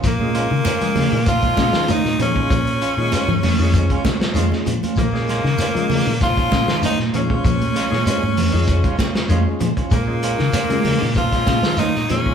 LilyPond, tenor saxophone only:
\new Staff \with { instrumentName = "Tenor saxophone" } { \time 4/4 \key bes \minor \tempo 4 = 97 bes2 f'4 ees'8 des'8~ | des'2.~ des'8 r8 | bes2 f'4 ees'8 des'8~ | des'2.~ des'8 r8 |
bes2 f'4 ees'8 des'8 | }